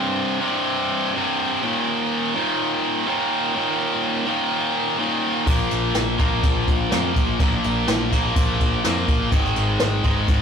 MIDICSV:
0, 0, Header, 1, 4, 480
1, 0, Start_track
1, 0, Tempo, 481928
1, 1611, Time_signature, 4, 2, 24, 8
1, 10377, End_track
2, 0, Start_track
2, 0, Title_t, "Distorted electric guitar"
2, 0, Program_c, 0, 30
2, 0, Note_on_c, 0, 36, 87
2, 0, Note_on_c, 0, 43, 108
2, 0, Note_on_c, 0, 48, 107
2, 392, Note_off_c, 0, 36, 0
2, 399, Note_off_c, 0, 43, 0
2, 399, Note_off_c, 0, 48, 0
2, 411, Note_on_c, 0, 48, 87
2, 425, Note_on_c, 0, 43, 76
2, 432, Note_on_c, 0, 36, 73
2, 1117, Note_off_c, 0, 48, 0
2, 1123, Note_off_c, 0, 36, 0
2, 1123, Note_off_c, 0, 43, 0
2, 1135, Note_on_c, 0, 36, 89
2, 1151, Note_on_c, 0, 43, 94
2, 1154, Note_on_c, 0, 48, 96
2, 1598, Note_off_c, 0, 36, 0
2, 1607, Note_off_c, 0, 43, 0
2, 1608, Note_off_c, 0, 48, 0
2, 1615, Note_on_c, 0, 39, 106
2, 1628, Note_on_c, 0, 46, 99
2, 1639, Note_on_c, 0, 51, 105
2, 2326, Note_off_c, 0, 46, 0
2, 2333, Note_off_c, 0, 51, 0
2, 2337, Note_on_c, 0, 51, 97
2, 2347, Note_on_c, 0, 46, 87
2, 2354, Note_off_c, 0, 39, 0
2, 2358, Note_on_c, 0, 39, 78
2, 3037, Note_off_c, 0, 39, 0
2, 3040, Note_off_c, 0, 51, 0
2, 3046, Note_off_c, 0, 46, 0
2, 3049, Note_on_c, 0, 39, 83
2, 3060, Note_on_c, 0, 46, 88
2, 3068, Note_on_c, 0, 51, 99
2, 3514, Note_off_c, 0, 39, 0
2, 3522, Note_off_c, 0, 46, 0
2, 3526, Note_off_c, 0, 51, 0
2, 3526, Note_on_c, 0, 39, 96
2, 3541, Note_on_c, 0, 46, 96
2, 3546, Note_on_c, 0, 51, 113
2, 4229, Note_off_c, 0, 51, 0
2, 4235, Note_off_c, 0, 39, 0
2, 4241, Note_on_c, 0, 51, 101
2, 4243, Note_off_c, 0, 46, 0
2, 4257, Note_on_c, 0, 46, 79
2, 4265, Note_on_c, 0, 39, 78
2, 4949, Note_off_c, 0, 39, 0
2, 4953, Note_off_c, 0, 51, 0
2, 4958, Note_off_c, 0, 46, 0
2, 4961, Note_on_c, 0, 39, 77
2, 4970, Note_on_c, 0, 46, 83
2, 4980, Note_on_c, 0, 51, 93
2, 5428, Note_off_c, 0, 46, 0
2, 5433, Note_off_c, 0, 39, 0
2, 5440, Note_on_c, 0, 46, 94
2, 5442, Note_off_c, 0, 51, 0
2, 5453, Note_on_c, 0, 53, 107
2, 5464, Note_on_c, 0, 58, 100
2, 6149, Note_off_c, 0, 58, 0
2, 6153, Note_on_c, 0, 58, 87
2, 6162, Note_off_c, 0, 53, 0
2, 6166, Note_on_c, 0, 53, 84
2, 6176, Note_off_c, 0, 46, 0
2, 6180, Note_on_c, 0, 46, 71
2, 6861, Note_off_c, 0, 46, 0
2, 6868, Note_off_c, 0, 58, 0
2, 6873, Note_on_c, 0, 46, 88
2, 6874, Note_off_c, 0, 53, 0
2, 6890, Note_on_c, 0, 53, 84
2, 6897, Note_on_c, 0, 58, 89
2, 7348, Note_off_c, 0, 46, 0
2, 7356, Note_off_c, 0, 53, 0
2, 7360, Note_off_c, 0, 58, 0
2, 7365, Note_on_c, 0, 46, 105
2, 7376, Note_on_c, 0, 53, 98
2, 7386, Note_on_c, 0, 58, 104
2, 8073, Note_off_c, 0, 46, 0
2, 8078, Note_off_c, 0, 53, 0
2, 8081, Note_off_c, 0, 58, 0
2, 8093, Note_on_c, 0, 58, 89
2, 8103, Note_on_c, 0, 53, 79
2, 8116, Note_on_c, 0, 46, 73
2, 8790, Note_off_c, 0, 46, 0
2, 8796, Note_off_c, 0, 58, 0
2, 8801, Note_off_c, 0, 53, 0
2, 8802, Note_on_c, 0, 46, 79
2, 8816, Note_on_c, 0, 53, 89
2, 8824, Note_on_c, 0, 58, 99
2, 9268, Note_off_c, 0, 46, 0
2, 9272, Note_on_c, 0, 44, 103
2, 9277, Note_off_c, 0, 53, 0
2, 9281, Note_off_c, 0, 58, 0
2, 9287, Note_on_c, 0, 51, 100
2, 9293, Note_on_c, 0, 56, 102
2, 9983, Note_off_c, 0, 44, 0
2, 9991, Note_off_c, 0, 51, 0
2, 9991, Note_off_c, 0, 56, 0
2, 10003, Note_on_c, 0, 56, 91
2, 10014, Note_on_c, 0, 51, 85
2, 10027, Note_on_c, 0, 44, 80
2, 10377, Note_off_c, 0, 44, 0
2, 10377, Note_off_c, 0, 51, 0
2, 10377, Note_off_c, 0, 56, 0
2, 10377, End_track
3, 0, Start_track
3, 0, Title_t, "Picked electric bass"
3, 0, Program_c, 1, 34
3, 5443, Note_on_c, 1, 34, 98
3, 5635, Note_off_c, 1, 34, 0
3, 5690, Note_on_c, 1, 34, 93
3, 5879, Note_off_c, 1, 34, 0
3, 5933, Note_on_c, 1, 34, 91
3, 6121, Note_off_c, 1, 34, 0
3, 6168, Note_on_c, 1, 34, 92
3, 6358, Note_off_c, 1, 34, 0
3, 6408, Note_on_c, 1, 34, 95
3, 6598, Note_off_c, 1, 34, 0
3, 6649, Note_on_c, 1, 34, 88
3, 6838, Note_off_c, 1, 34, 0
3, 6891, Note_on_c, 1, 41, 102
3, 7079, Note_off_c, 1, 41, 0
3, 7130, Note_on_c, 1, 34, 92
3, 7319, Note_off_c, 1, 34, 0
3, 7365, Note_on_c, 1, 34, 105
3, 7555, Note_off_c, 1, 34, 0
3, 7618, Note_on_c, 1, 34, 97
3, 7803, Note_off_c, 1, 34, 0
3, 7853, Note_on_c, 1, 34, 83
3, 8040, Note_off_c, 1, 34, 0
3, 8087, Note_on_c, 1, 34, 88
3, 8276, Note_off_c, 1, 34, 0
3, 8327, Note_on_c, 1, 34, 101
3, 8516, Note_off_c, 1, 34, 0
3, 8564, Note_on_c, 1, 34, 97
3, 8754, Note_off_c, 1, 34, 0
3, 8810, Note_on_c, 1, 41, 108
3, 8997, Note_off_c, 1, 41, 0
3, 9039, Note_on_c, 1, 34, 93
3, 9230, Note_off_c, 1, 34, 0
3, 9279, Note_on_c, 1, 32, 101
3, 9470, Note_off_c, 1, 32, 0
3, 9522, Note_on_c, 1, 32, 105
3, 9712, Note_off_c, 1, 32, 0
3, 9759, Note_on_c, 1, 32, 95
3, 9950, Note_off_c, 1, 32, 0
3, 9996, Note_on_c, 1, 32, 96
3, 10187, Note_off_c, 1, 32, 0
3, 10242, Note_on_c, 1, 32, 88
3, 10377, Note_off_c, 1, 32, 0
3, 10377, End_track
4, 0, Start_track
4, 0, Title_t, "Drums"
4, 5445, Note_on_c, 9, 49, 108
4, 5448, Note_on_c, 9, 36, 115
4, 5545, Note_off_c, 9, 49, 0
4, 5547, Note_off_c, 9, 36, 0
4, 5685, Note_on_c, 9, 51, 79
4, 5784, Note_off_c, 9, 51, 0
4, 5922, Note_on_c, 9, 38, 120
4, 5922, Note_on_c, 9, 51, 103
4, 6022, Note_off_c, 9, 38, 0
4, 6022, Note_off_c, 9, 51, 0
4, 6166, Note_on_c, 9, 51, 82
4, 6167, Note_on_c, 9, 36, 87
4, 6266, Note_off_c, 9, 51, 0
4, 6267, Note_off_c, 9, 36, 0
4, 6406, Note_on_c, 9, 51, 105
4, 6408, Note_on_c, 9, 36, 113
4, 6506, Note_off_c, 9, 51, 0
4, 6508, Note_off_c, 9, 36, 0
4, 6649, Note_on_c, 9, 36, 92
4, 6650, Note_on_c, 9, 51, 74
4, 6748, Note_off_c, 9, 36, 0
4, 6750, Note_off_c, 9, 51, 0
4, 6890, Note_on_c, 9, 38, 127
4, 6890, Note_on_c, 9, 51, 120
4, 6990, Note_off_c, 9, 38, 0
4, 6990, Note_off_c, 9, 51, 0
4, 7130, Note_on_c, 9, 36, 88
4, 7132, Note_on_c, 9, 51, 80
4, 7230, Note_off_c, 9, 36, 0
4, 7231, Note_off_c, 9, 51, 0
4, 7366, Note_on_c, 9, 51, 108
4, 7368, Note_on_c, 9, 36, 114
4, 7465, Note_off_c, 9, 51, 0
4, 7467, Note_off_c, 9, 36, 0
4, 7489, Note_on_c, 9, 38, 36
4, 7589, Note_off_c, 9, 38, 0
4, 7608, Note_on_c, 9, 51, 82
4, 7708, Note_off_c, 9, 51, 0
4, 7845, Note_on_c, 9, 38, 115
4, 7845, Note_on_c, 9, 51, 113
4, 7945, Note_off_c, 9, 38, 0
4, 7945, Note_off_c, 9, 51, 0
4, 8086, Note_on_c, 9, 36, 78
4, 8090, Note_on_c, 9, 51, 87
4, 8186, Note_off_c, 9, 36, 0
4, 8190, Note_off_c, 9, 51, 0
4, 8325, Note_on_c, 9, 51, 113
4, 8326, Note_on_c, 9, 36, 117
4, 8425, Note_off_c, 9, 36, 0
4, 8425, Note_off_c, 9, 51, 0
4, 8566, Note_on_c, 9, 36, 85
4, 8570, Note_on_c, 9, 51, 80
4, 8666, Note_off_c, 9, 36, 0
4, 8669, Note_off_c, 9, 51, 0
4, 8809, Note_on_c, 9, 38, 127
4, 8809, Note_on_c, 9, 51, 127
4, 8908, Note_off_c, 9, 38, 0
4, 8908, Note_off_c, 9, 51, 0
4, 9044, Note_on_c, 9, 36, 93
4, 9044, Note_on_c, 9, 51, 85
4, 9143, Note_off_c, 9, 36, 0
4, 9143, Note_off_c, 9, 51, 0
4, 9280, Note_on_c, 9, 51, 109
4, 9283, Note_on_c, 9, 36, 116
4, 9380, Note_off_c, 9, 51, 0
4, 9382, Note_off_c, 9, 36, 0
4, 9407, Note_on_c, 9, 38, 35
4, 9507, Note_off_c, 9, 38, 0
4, 9520, Note_on_c, 9, 51, 82
4, 9619, Note_off_c, 9, 51, 0
4, 9757, Note_on_c, 9, 38, 121
4, 9757, Note_on_c, 9, 51, 108
4, 9857, Note_off_c, 9, 38, 0
4, 9857, Note_off_c, 9, 51, 0
4, 9998, Note_on_c, 9, 51, 76
4, 10000, Note_on_c, 9, 36, 83
4, 10097, Note_off_c, 9, 51, 0
4, 10100, Note_off_c, 9, 36, 0
4, 10238, Note_on_c, 9, 51, 102
4, 10240, Note_on_c, 9, 36, 116
4, 10337, Note_off_c, 9, 51, 0
4, 10339, Note_off_c, 9, 36, 0
4, 10377, End_track
0, 0, End_of_file